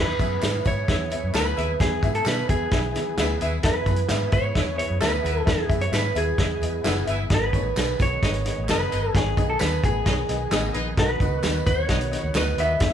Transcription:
Already playing: E2 E3 B3 E4 G#4 E5
0.01 B4
0.19 F#2 B3 E4 G#4 E5, kick, closed hi-hat, tambourine
0.42 G#2 B3 E4 G#4 E5, snare, clap, closed hi-hat, tambourine
0.65 G#2 B3 E4 G#4 C#5 E5, kick, closed hi-hat, tambourine
0.88 E2 B3 E4 G#4 B4 E5, kick, snare, closed hi-hat, tambourine
1.10 B3 E4 G#4 E5, closed hi-hat, tambourine
1.23 F#2
1.33 D2 B3 E4 G#4 B4 E5, snare, clap, closed hi-hat, tambourine
1.57 D#2 B3 E4 G#4 B4 E5, closed hi-hat, tambourine
1.79 E2 E3 B3 E4 G#4 E5, kick, snare, closed hi-hat, tambourine
2.02 G#2 B3 E4 G#4 E5, kick, closed hi-hat, tambourine
2.15 A4, closed hi-hat
2.25 B2 B3 E4 G#4 B4 E5, snare, clap, closed hi-hat, tambourine
2.49 E2 B3 E4 G#4 E5, kick, closed hi-hat, tambourine
2.71 B1 B3 E4 G#4 B4 E5, kick, snare, closed hi-hat, tambourine
2.95 E3 B3 E4 G#4 E5, snare, closed hi-hat, tambourine
3.17 D2 B3 E4 G#4 B4 E5, snare, clap, closed hi-hat, tambourine
3.41 D#2 B3 E4 G#4 B4 E5, closed hi-hat, tambourine
3.63 E2 E3 B3 E4 G#4 B4 E5, kick, snare, closed hi-hat, tambourine
3.86 F#2 B3 E4 G#4 B4, kick, closed hi-hat, tambourine
3.96 closed hi-hat
4.09 G#2 B3 E4 G#4 E5, snare, clap, closed hi-hat, tambourine
4.32 G#2 B3 E4 G#4 C#5 E5, kick, closed hi-hat, tambourine
4.55 E2 B3 E4 G#4 B4 E5, kick, snare, closed hi-hat, tambourine
4.77 B3 E4 G#4 C#5 E5, closed hi-hat
4.90 F#2
5.01 D2 B3 E4 G#4 B4 E5, snare, clap, closed hi-hat, tambourine
5.22 D#2 B3 E4 G#4 B4 E5 F#5, closed hi-hat, tambourine
5.45 E2 E3 B3 E4 G#4 E5, kick, snare, closed hi-hat, tambourine
5.69 F#2 B3 E4 G#4 E5, kick, closed hi-hat, tambourine
5.81 C#5, closed hi-hat
5.92 G#2 B3 E4 G#4 B4 E5, snare, clap, closed hi-hat, tambourine
6.15 D#2 B3 E4 G#4 E5, closed hi-hat, tambourine
6.38 E2 B3 E4 G#4 B4 D#5 E5, kick, snare, closed hi-hat, tambourine
6.61 E2 B3 E4 G#4 D#5, closed hi-hat, tambourine
6.84 F#1 B3 E4 G#4 B4 E5 F#5, snare, clap, closed hi-hat, tambourine
7.07 G1 B3 E4 G#4 B4 E5, closed hi-hat, tambourine
7.30 G#1 G#2 D#3 B3 D#4 G#4 D#5, kick, snare, closed hi-hat, tambourine
7.34 B4
7.53 A1 B3 D#4 G#4 C#5, kick, closed hi-hat, tambourine
7.76 B1 B3 D#4 G#4 B4, snare, clap, closed hi-hat, tambourine
7.99 B1 B3 D#4 G#4 C#5, kick, closed hi-hat, tambourine
8.22 G#1 B3 D#4 G#4 B4 D#5, kick, snare, closed hi-hat, tambourine
8.34 closed hi-hat
8.45 B3 D#4 G#4 D#5, snare, closed hi-hat, tambourine
8.58 A1
8.69 F#1 B3 D#4 G#4 B4 D#5, snare, clap, closed hi-hat, tambourine
8.91 G1 B3 D#4 G#4 B4 D#5, closed hi-hat, tambourine
9.15 G#1 G#2 B3 D#4 G#4 C#5, kick, snare, closed hi-hat, tambourine
9.37 B1 B3 D#4 G#4 D#5, kick, closed hi-hat, tambourine
9.50 A4
9.60 D#2 B3 D#4 G#4 B4, snare, clap, closed hi-hat, tambourine
9.83 A1 B3 D#4 G#4 F#5, kick, closed hi-hat, tambourine
10.06 B1 B3 D#4 G#4 B4 C#5 D#5, kick, snare, closed hi-hat, tambourine
10.29 B1 B3 D#4 G#4 D#5, snare, closed hi-hat, tambourine
10.51 A1 B3 D#4 G#4 B4 D#5, snare, clap, closed hi-hat, tambourine
10.74 A#1 B3 D#4 G#4 B4 D#5, closed hi-hat, tambourine
10.97 B1 B2 B3 D#4 F#4 B4 D#5, kick, snare, closed hi-hat
11.20 C#2 B3 D#4 F#4 D#5, kick, closed hi-hat, tambourine
11.43 D#2 B3 D#4 F#4 D#5, snare, clap, closed hi-hat, tambourine
11.66 D#2 B3 D#4 F#4 C#5 D#5, kick, closed hi-hat, tambourine
11.89 B1 B3 D#4 F#4 B4 D#5, kick, snare, closed hi-hat, tambourine
12.01 closed hi-hat
12.12 B3 D#4 F#4 D#5, snare, closed hi-hat, tambourine
12.24 D#2
12.35 D2 B3 D#4 F#4 B4 D#5, snare, clap, closed hi-hat, tambourine
12.57 D#2 B3 D#4 F#4 B4 D#5 E5, closed hi-hat, tambourine
12.80 E2 E3 B3 E4 G#4 E5, kick, snare, closed hi-hat

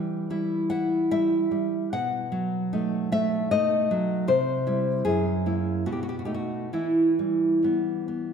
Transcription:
Already playing: E3 G3 G5
0.30 G3 E4
0.70 E4 F#5
1.11 G3 E4 E5
1.51 G3
1.93 B2 F#5
2.32 F#3
2.73 A3 D#4
3.12 A3 E5
3.51 A3 D#4 D#5
3.91 F#3
4.28 C3 C5
4.67 G3 E4
5.05 F#2 G#4
5.46 A#3 E4
5.86 B2 F#4
5.92 G4
6.03 F#4
6.09 G4
6.19 F#4
6.25 A3 D#4 G4
6.34 F#4
6.73 E3 E4
7.19 G3
7.63 G3 B3
8.08 B3

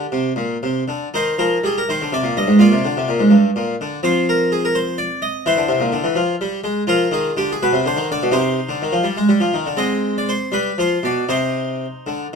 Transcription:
Already playing: G4
0.12 C3
0.36 A#2
0.63 C3
0.88 D3
1.14 D#3 D#4 C5
1.39 F3 A#4
1.64 G3 G#4
1.78 A#4
1.89 D#3 C5
2.02 D3
2.13 C3 D5
2.23 A#2
2.37 G2 D#5
2.47 G#2
2.59 A#2 F4 D5
2.72 C3
2.85 D3
2.97 C3
3.09 A#2
3.20 G#2
3.31 G2
3.56 A#2
3.81 D3
4.03 F3 C4 C5
4.29 A#4
4.52 G#4
4.65 A#4
4.75 C5
4.98 D5
5.22 D#5
5.46 E3 E4 C5
5.57 D3
5.68 C3
5.80 A#2
5.92 D3
6.04 E3
6.15 F3
6.41 G3
6.64 G#3
6.87 F3 F4 A#4
7.11 D#3 G#4
7.37 D3 G4
7.52 G#4
7.63 B2 B4
7.73 C3
7.86 D3 C5
7.97 D#3
8.11 D3 D5
8.23 B2
8.32 C3 D#4 C5
8.69 D3
8.82 D#3
8.92 F3
9.04 G3
9.17 G#3
9.29 G3
9.40 F3
9.54 D#3
9.66 D3
9.77 G#3 C4 D#5
10.18 D5
10.29 C5
10.52 G3 B4
10.78 F3 C5
11.03 B2 D5
11.29 C3 D#4 C5
12.06 D3

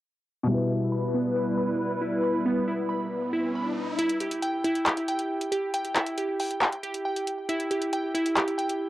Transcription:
0.43 B2 G3
0.48 G3 B3 E4 B4
0.54 B4
0.70 E4
0.92 B5
1.14 B3
1.36 E4
1.58 B5
2.02 E4
2.23 B5, riser
2.46 B3
2.68 E4
2.89 B5
3.33 E4
3.55 B5
3.99 E4, closed hi-hat
4.09 closed hi-hat
4.20 G4, closed hi-hat
4.31 closed hi-hat
4.42 G5, closed hi-hat
4.64 E4, closed hi-hat
4.75 closed hi-hat
4.86 G4, clap, closed hi-hat
4.97 closed hi-hat
5.08 G5, closed hi-hat
5.19 closed hi-hat
5.41 closed hi-hat
5.52 G4, closed hi-hat
5.74 G5, closed hi-hat
5.85 closed hi-hat
5.95 E4, clap, closed hi-hat
6.06 closed hi-hat
6.18 G4, closed hi-hat
6.40 G5, open hi-hat
6.51 closed hi-hat
6.61 clap, closed hi-hat
6.72 closed hi-hat
6.83 G4, closed hi-hat
6.94 closed hi-hat
7.05 G5
7.16 closed hi-hat
7.27 closed hi-hat
7.49 E4, closed hi-hat
7.60 closed hi-hat
7.71 G4, closed hi-hat
7.82 closed hi-hat
7.93 G5, closed hi-hat
8.14 E4, closed hi-hat
8.26 closed hi-hat
8.36 G4, clap, closed hi-hat
8.48 closed hi-hat
8.58 G5, closed hi-hat
8.69 closed hi-hat

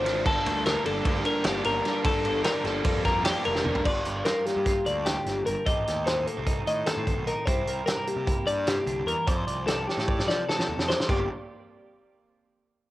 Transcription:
Already playing: G#1 C5
0.04 D3 F3 A3 D4, snare, ride
0.24 G1 G2 D3 G3 A#3 D4 A4, kick, crash
0.44 D2 G3 A#3 D4, ride
0.65 D3 G3 A#3 D4 A#4, snare, ride
0.85 G1 G3 A#3 D4 A4, ride
1.05 D2 G2 D3 G3 A#3 D4, kick, ride
1.25 G3 A#3 D4 A#4, ride
1.44 G1 D3 G3 A#3 D4 G4, snare, ride
1.64 G1 A#4, ride
1.85 G2 D3 G3 A#3 D4, snare, ride
2.04 D2 G2 D3 G3 A#3 D4 A4, kick, ride
2.25 G1 A#3 D4, ride
2.29 G3
2.44 D3 G3 A#3 D4 A#4, snare, ride
2.64 G1 G3 A#3 D4 A4, snare, ride
2.84 F2 G2 D3 G3 A#3 D4, kick, ride
3.04 G3 A#3 D4 A#4, kick, snare, ride
3.24 D3 G3 A#3 D4 G4, snare, ride
3.45 F1 A#4, ride
3.56 snare
3.65 G2 D3 G3 A#3 D4, mid tom
3.75 floor tom
3.85 G1 G2 F4 D5, kick, crash
4.05 G1 G4, closed hi-hat
4.16 A#4
4.25 G3 F4 A#4, snare, closed hi-hat
4.46 A#3 G4, snare, closed hi-hat
4.56 G2
4.66 F4, kick, snare, closed hi-hat
4.85 D2 D3 D5, closed hi-hat
5.06 G4, snare, closed hi-hat
5.26 G1, snare, closed hi-hat
5.46 G1 G2 A#4, closed hi-hat
5.65 A1 A2 A3 C4 D#4 G4 D#5, kick, closed hi-hat
5.86 D#2 G4, snare, closed hi-hat
6.04 A3 D#4 C5, snare, closed hi-hat
6.26 A#3 A4, closed hi-hat
6.37 C2 C4
6.46 D#4, kick, closed hi-hat
6.66 A2 D#3 D#5, closed hi-hat
6.86 A#3 A4, snare, closed hi-hat
6.97 A2 C4
7.07 G1, kick, closed hi-hat
7.15 B1
7.27 A2 D#4 A#4, closed hi-hat
7.46 C2 C3 E4 C5, kick, closed hi-hat
7.64 C2 A#4, closed hi-hat
7.86 G3 D4 A#4, snare, closed hi-hat
7.96 E4
8.06 A#3 G4, closed hi-hat
8.16 C3
8.27 E4, kick, closed hi-hat
8.45 G2 D5, closed hi-hat
8.66 C3 G4, snare, closed hi-hat
8.86 C2 D3, closed hi-hat
9.06 E2 E3 A#4, closed hi-hat
9.27 F2 F3 C5 D5, kick, closed hi-hat
9.46 C2 D5, closed hi-hat
9.67 F4 A4 D5, snare, closed hi-hat
9.87 G4 A4, snare
9.97 A2, snare
10.08 D5, kick
10.19 snare
10.27 C3 F3 D5, snare
10.49 A4, snare
10.59 F3, snare
10.68 D#2
10.77 F2, snare
10.88 F3 C5 D5, snare
11.00 snare
11.09 G1 G2 A#3 F4 G4 D5, kick, crash

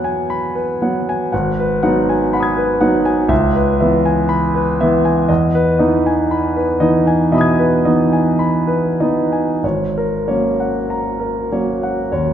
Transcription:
Already playing: B2 F#3 B3 B4 F#5 G#5 B5
0.04 G#5
0.30 B5
0.55 B4
0.82 F#3 B3 F#5
1.09 G#5
1.32 G#1 F#5
1.59 B4
1.83 F#3 B3 D#4 F#5
2.09 G#5
2.33 F#5 B5
2.40 D#6 G#6
2.57 B4
2.81 F#3 B3 D#4 F#5
3.05 G#5
3.29 C#2 E5
3.55 B4
3.80 E3 B3 E5
4.05 G#5
4.29 B5
4.55 B4
4.80 E3 B3 E5
5.05 G#5
5.29 E2 D#5
5.55 B4
5.79 E3 B3 D#4 D#5
6.06 G#5
6.31 B5
6.56 B4
6.80 E3 B3 D#4 D#5
7.07 G#5
7.32 B2 D#5 E5 B5
7.38 D#6 G#6
7.59 B4
7.85 E3 B3 D#4 D#5
8.13 G#5
8.39 B5
8.67 B4
9.00 E3 B3 D#4 D#5
9.32 G#5
9.63 G#1 C#5
9.98 A#4
10.28 F#3 A#3 C#4 C#5
10.60 F#5
10.90 A#5
11.20 A#4
11.52 F#3 A#3 C#4 C#5
11.83 F#5
12.12 D#2 C#5

